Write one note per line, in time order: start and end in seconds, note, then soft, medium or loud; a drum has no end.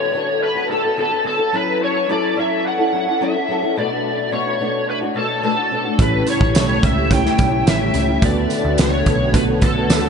0.00 0.12 D3 medium
0.00 0.13 B3 medium
0.00 0.14 F#4 medium
0.00 0.14 A4 medium
0.00 0.43 C#5 loud
0.13 0.55 D3 medium
0.13 0.56 B3 medium
0.13 0.55 F#4 medium
0.13 0.54 A4 medium
0.43 0.71 B4 loud
0.55 0.69 B3 medium
0.55 0.70 F#4 medium
0.55 0.69 A4 medium
0.69 0.83 D3 medium
0.69 0.84 B3 medium
0.69 0.83 F#4 medium
0.69 0.96 A4 medium
0.69 0.82 A4 medium
0.83 0.96 B3 soft
0.83 0.97 F#4 soft
0.83 0.97 A4 medium
0.97 1.11 D3 medium
0.97 1.11 B3 medium
0.97 1.11 F#4 medium
0.97 1.09 A4 medium
0.97 1.26 A4 loud
1.10 1.23 B3 soft
1.10 1.25 F#4 soft
1.10 1.24 A4 medium
1.24 1.38 D3 medium
1.24 1.39 B3 medium
1.24 1.38 F#4 medium
1.24 1.36 A4 medium
1.24 1.55 A4 loud
1.37 1.53 B3 soft
1.37 1.53 F#4 medium
1.37 1.52 A4 medium
1.52 2.07 F#3 medium
1.52 2.08 C#4 medium
1.52 2.08 E4 medium
1.52 2.10 A4 medium
1.52 1.83 B4 loud
1.84 2.11 C#5 loud
2.08 2.35 F#3 medium
2.08 2.36 C#4 medium
2.08 2.37 E4 medium
2.08 2.38 A4 medium
2.08 2.39 D5 loud
2.36 2.78 F#3 medium
2.36 2.79 C#4 medium
2.36 2.78 E4 medium
2.36 2.76 A4 medium
2.36 2.67 E5 loud
2.67 3.23 F#5 loud
2.77 2.92 C#4 soft
2.77 2.93 E4 medium
2.77 2.92 A4 medium
2.92 3.06 F#3 medium
2.92 3.07 C#4 medium
2.92 3.07 E4 medium
2.92 3.05 A4 medium
3.06 3.20 C#4 soft
3.06 3.21 E4 soft
3.06 3.20 A4 medium
3.20 3.34 F#3 medium
3.20 3.35 C#4 medium
3.20 3.35 E4 medium
3.20 3.34 A4 loud
3.20 3.73 E5 loud
3.35 3.48 C#4 soft
3.35 3.49 E4 medium
3.35 3.49 A4 medium
3.48 3.62 F#3 medium
3.48 3.63 C#4 medium
3.48 3.63 E4 medium
3.48 3.61 A4 medium
3.62 3.78 C#4 medium
3.62 3.77 E4 medium
3.62 3.76 A4 medium
3.76 4.30 B2 medium
3.76 4.32 A3 medium
3.76 4.32 D4 medium
3.76 4.32 F#4 medium
3.76 4.29 D5 loud
4.31 4.58 B2 medium
4.31 4.59 A3 medium
4.31 4.60 D4 medium
4.31 4.61 F#4 medium
4.31 4.89 C#5 loud
4.59 5.01 B2 medium
4.59 5.02 A3 medium
4.59 5.02 D4 medium
4.59 5.00 F#4 medium
4.90 4.97 B4 loud
5.01 5.14 A3 medium
5.01 5.15 D4 medium
5.01 5.15 F#4 medium
5.14 5.41 B2 medium
5.14 5.42 A3 medium
5.14 5.43 D4 medium
5.14 5.44 F#4 medium
5.14 5.44 A4 medium
5.42 5.57 B2 medium
5.42 5.57 A3 medium
5.42 5.57 D4 medium
5.42 5.55 F#4 medium
5.42 6.02 A4 medium
5.56 5.70 A3 soft
5.56 5.71 D4 soft
5.56 5.71 F#4 soft
5.70 5.85 B2 medium
5.70 5.85 A3 medium
5.70 5.85 D4 medium
5.70 5.83 F#4 medium
5.84 5.99 A3 medium
5.84 5.99 D4 medium
5.84 5.99 F#4 medium
5.98 6.21 A1 loud
5.98 6.52 A2 medium
5.98 8.20 C#3 medium
5.98 6.53 G3 medium
5.98 6.66 A3 medium
5.98 8.20 A3 medium
5.98 6.67 C#4 medium
5.98 6.54 C#4 medium
5.98 6.67 E4 medium
5.98 6.55 E4 medium
5.98 8.20 G4 loud
5.98 6.67 G4 medium
5.98 6.29 B4 loud
5.98 6.68 C#5 medium
5.98 kick loud
5.98 closed hi-hat medium
5.98 tambourine soft
6.27 6.80 C#5 loud
6.27 closed hi-hat medium
6.27 tambourine soft
6.41 6.52 A1 loud
6.41 kick medium
6.53 6.77 B1 medium
6.53 6.80 A2 medium
6.53 6.81 G3 medium
6.53 6.82 C#4 medium
6.53 6.83 E4 medium
6.53 snare loud
6.53 closed hi-hat loud
6.53 tambourine medium
6.81 7.28 C#2 loud
6.81 7.24 A2 medium
6.81 7.24 G3 medium
6.81 7.25 C#4 medium
6.81 7.22 E4 medium
6.81 kick loud
6.81 closed hi-hat medium
6.81 tambourine soft
6.85 7.13 E5 loud
7.10 7.78 A3 medium
7.10 7.78 C#4 medium
7.10 7.79 E4 medium
7.10 7.79 G4 medium
7.10 7.79 C#5 medium
7.10 7.69 G5 loud
7.10 kick loud
7.10 closed hi-hat medium
7.10 tambourine soft
7.24 7.37 G3 medium
7.24 7.38 C#4 medium
7.24 7.38 E4 medium
7.24 snare soft
7.37 7.61 B1 medium
7.37 7.52 A2 medium
7.37 7.53 G3 medium
7.37 7.52 C#4 medium
7.37 7.50 E4 medium
7.37 kick loud
7.37 closed hi-hat medium
7.37 tambourine soft
7.52 7.64 G3 soft
7.52 7.65 C#4 soft
7.52 7.66 E4 medium
7.65 7.89 A1 medium
7.65 7.80 A2 medium
7.65 7.80 G3 medium
7.65 7.79 C#4 medium
7.65 7.77 E4 medium
7.65 8.25 E5 loud
7.65 snare loud
7.65 closed hi-hat medium
7.65 tambourine medium
7.78 7.93 G3 soft
7.78 7.94 C#4 medium
7.78 7.93 E4 soft
7.94 8.17 C#2 loud
7.94 8.08 A2 medium
7.94 8.08 G3 medium
7.94 8.08 C#4 medium
7.94 8.06 E4 medium
7.94 closed hi-hat medium
7.94 tambourine medium
8.07 8.23 G3 medium
8.07 8.22 C#4 medium
8.07 8.22 E4 medium
8.21 8.45 D2 loud
8.21 10.09 D3 medium
8.21 8.77 D3 medium
8.21 8.89 A3 medium
8.21 10.09 B3 medium
8.21 8.89 B3 medium
8.21 8.78 B3 medium
8.21 8.90 D4 medium
8.21 10.09 F#4 medium
8.21 8.90 F#4 medium
8.21 8.79 F#4 medium
8.21 8.79 A4 medium
8.21 8.90 B4 medium
8.21 8.80 D5 medium
8.21 kick loud
8.21 closed hi-hat medium
8.21 tambourine soft
8.50 closed hi-hat medium
8.50 tambourine soft
8.65 8.76 D2 loud
8.78 9.01 C#2 medium
8.78 9.04 D3 medium
8.78 9.06 B3 medium
8.78 9.06 F#4 medium
8.78 9.07 A4 medium
8.78 9.35 C#5 loud
8.78 snare loud
8.78 closed hi-hat loud
8.78 tambourine medium
9.06 9.90 B1 loud
9.06 9.47 D3 medium
9.06 9.48 B3 medium
9.06 9.49 F#4 medium
9.06 9.47 A4 medium
9.06 kick loud
9.06 closed hi-hat medium
9.06 tambourine soft
9.32 10.00 A3 medium
9.32 10.01 B3 medium
9.32 10.01 D4 medium
9.32 10.01 F#4 medium
9.32 10.02 B4 medium
9.32 9.43 B4 loud
9.32 kick medium
9.32 closed hi-hat loud
9.32 tambourine soft
9.48 9.61 B3 soft
9.48 9.63 F#4 medium
9.48 9.62 A4 medium
9.61 9.75 D3 medium
9.61 9.76 B3 medium
9.61 9.77 F#4 medium
9.61 10.09 A4 medium
9.61 9.75 A4 medium
9.61 kick medium
9.61 closed hi-hat medium
9.61 tambourine soft
9.76 9.90 B3 soft
9.76 9.90 F#4 medium
9.76 9.90 A4 soft
9.90 10.09 D2 medium
9.90 10.03 D3 medium
9.90 10.04 B3 medium
9.90 10.03 F#4 medium
9.90 10.01 A4 medium
9.90 snare loud
9.90 closed hi-hat medium
9.90 tambourine medium
10.02 10.09 B3 soft
10.02 10.09 F#4 soft
10.02 10.09 A4 medium